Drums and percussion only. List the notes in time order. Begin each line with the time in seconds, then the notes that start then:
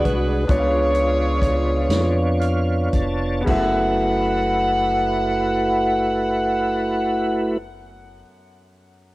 0.05 kick, closed hi-hat
0.49 kick, closed hi-hat
0.95 closed hi-hat
1.42 kick, closed hi-hat
1.90 snare, closed hi-hat
2.41 closed hi-hat
2.93 kick, closed hi-hat
3.47 kick, crash